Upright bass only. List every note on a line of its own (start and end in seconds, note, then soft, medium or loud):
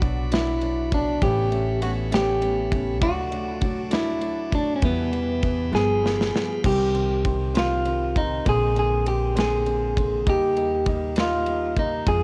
0.00 1.18 B1 loud
1.22 3.02 A1 loud
3.02 4.78 D2 loud
4.82 5.69 E2 loud
5.73 6.30 G1 loud
6.64 8.42 C2 loud
8.46 10.23 A#1 loud
10.26 12.03 D#2 medium
12.07 12.23 F2 loud